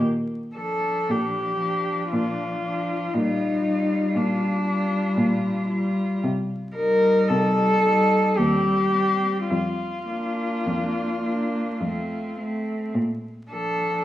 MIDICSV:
0, 0, Header, 1, 5, 480
1, 0, Start_track
1, 0, Time_signature, 3, 2, 24, 8
1, 0, Key_signature, -2, "major"
1, 0, Tempo, 1090909
1, 480, Tempo, 1018676
1, 2400, Tempo, 1058201
1, 3360, Tempo, 1107011
1, 4320, Tempo, 1153846
1, 5280, Tempo, 1123596
1, 6237, End_track
2, 0, Start_track
2, 0, Title_t, "Cello"
2, 0, Program_c, 0, 42
2, 245, Note_on_c, 0, 69, 49
2, 488, Note_on_c, 0, 67, 43
2, 495, Note_off_c, 0, 69, 0
2, 958, Note_off_c, 0, 67, 0
2, 961, Note_on_c, 0, 65, 48
2, 1445, Note_on_c, 0, 63, 54
2, 1452, Note_off_c, 0, 65, 0
2, 1929, Note_on_c, 0, 62, 52
2, 1936, Note_off_c, 0, 63, 0
2, 2642, Note_off_c, 0, 62, 0
2, 3123, Note_on_c, 0, 70, 75
2, 3360, Note_on_c, 0, 69, 70
2, 3366, Note_off_c, 0, 70, 0
2, 3831, Note_on_c, 0, 67, 60
2, 3838, Note_off_c, 0, 69, 0
2, 4316, Note_off_c, 0, 67, 0
2, 4318, Note_on_c, 0, 65, 50
2, 5506, Note_off_c, 0, 65, 0
2, 6006, Note_on_c, 0, 69, 57
2, 6237, Note_off_c, 0, 69, 0
2, 6237, End_track
3, 0, Start_track
3, 0, Title_t, "Cello"
3, 0, Program_c, 1, 42
3, 252, Note_on_c, 1, 62, 26
3, 717, Note_off_c, 1, 62, 0
3, 719, Note_on_c, 1, 62, 32
3, 1197, Note_off_c, 1, 62, 0
3, 1210, Note_on_c, 1, 62, 34
3, 1444, Note_off_c, 1, 62, 0
3, 1446, Note_on_c, 1, 65, 36
3, 1677, Note_off_c, 1, 65, 0
3, 1680, Note_on_c, 1, 65, 28
3, 2148, Note_off_c, 1, 65, 0
3, 2159, Note_on_c, 1, 65, 38
3, 2629, Note_off_c, 1, 65, 0
3, 2640, Note_on_c, 1, 65, 41
3, 2876, Note_off_c, 1, 65, 0
3, 3122, Note_on_c, 1, 63, 34
3, 3585, Note_off_c, 1, 63, 0
3, 3600, Note_on_c, 1, 63, 39
3, 3830, Note_off_c, 1, 63, 0
3, 3837, Note_on_c, 1, 60, 44
3, 4072, Note_off_c, 1, 60, 0
3, 4076, Note_on_c, 1, 60, 35
3, 4316, Note_off_c, 1, 60, 0
3, 4557, Note_on_c, 1, 62, 28
3, 5034, Note_off_c, 1, 62, 0
3, 5045, Note_on_c, 1, 62, 29
3, 5277, Note_off_c, 1, 62, 0
3, 5288, Note_on_c, 1, 60, 31
3, 5518, Note_off_c, 1, 60, 0
3, 5521, Note_on_c, 1, 60, 27
3, 5760, Note_off_c, 1, 60, 0
3, 6007, Note_on_c, 1, 62, 33
3, 6237, Note_off_c, 1, 62, 0
3, 6237, End_track
4, 0, Start_track
4, 0, Title_t, "Cello"
4, 0, Program_c, 2, 42
4, 246, Note_on_c, 2, 53, 31
4, 714, Note_off_c, 2, 53, 0
4, 719, Note_on_c, 2, 53, 33
4, 1197, Note_off_c, 2, 53, 0
4, 1208, Note_on_c, 2, 53, 32
4, 1443, Note_off_c, 2, 53, 0
4, 1454, Note_on_c, 2, 55, 31
4, 1682, Note_off_c, 2, 55, 0
4, 1691, Note_on_c, 2, 55, 34
4, 2154, Note_off_c, 2, 55, 0
4, 2156, Note_on_c, 2, 55, 39
4, 2627, Note_off_c, 2, 55, 0
4, 2634, Note_on_c, 2, 55, 39
4, 2873, Note_off_c, 2, 55, 0
4, 3113, Note_on_c, 2, 55, 42
4, 3580, Note_off_c, 2, 55, 0
4, 3590, Note_on_c, 2, 55, 37
4, 3825, Note_off_c, 2, 55, 0
4, 3827, Note_on_c, 2, 55, 40
4, 4068, Note_off_c, 2, 55, 0
4, 4073, Note_on_c, 2, 55, 33
4, 4315, Note_off_c, 2, 55, 0
4, 4556, Note_on_c, 2, 58, 33
4, 5033, Note_off_c, 2, 58, 0
4, 5041, Note_on_c, 2, 58, 29
4, 5275, Note_off_c, 2, 58, 0
4, 5284, Note_on_c, 2, 57, 26
4, 5521, Note_off_c, 2, 57, 0
4, 5530, Note_on_c, 2, 57, 28
4, 5765, Note_off_c, 2, 57, 0
4, 6015, Note_on_c, 2, 53, 35
4, 6237, Note_off_c, 2, 53, 0
4, 6237, End_track
5, 0, Start_track
5, 0, Title_t, "Cello"
5, 0, Program_c, 3, 42
5, 0, Note_on_c, 3, 46, 41
5, 415, Note_off_c, 3, 46, 0
5, 481, Note_on_c, 3, 46, 40
5, 899, Note_off_c, 3, 46, 0
5, 968, Note_on_c, 3, 46, 40
5, 1383, Note_off_c, 3, 46, 0
5, 1448, Note_on_c, 3, 46, 45
5, 1855, Note_off_c, 3, 46, 0
5, 1921, Note_on_c, 3, 46, 47
5, 2333, Note_off_c, 3, 46, 0
5, 2403, Note_on_c, 3, 46, 50
5, 2815, Note_off_c, 3, 46, 0
5, 2887, Note_on_c, 3, 48, 54
5, 3298, Note_off_c, 3, 48, 0
5, 3368, Note_on_c, 3, 48, 54
5, 3770, Note_off_c, 3, 48, 0
5, 3839, Note_on_c, 3, 39, 48
5, 4257, Note_off_c, 3, 39, 0
5, 4324, Note_on_c, 3, 41, 45
5, 4739, Note_off_c, 3, 41, 0
5, 4805, Note_on_c, 3, 41, 39
5, 5219, Note_off_c, 3, 41, 0
5, 5281, Note_on_c, 3, 41, 39
5, 5702, Note_off_c, 3, 41, 0
5, 5766, Note_on_c, 3, 46, 49
5, 6178, Note_off_c, 3, 46, 0
5, 6237, End_track
0, 0, End_of_file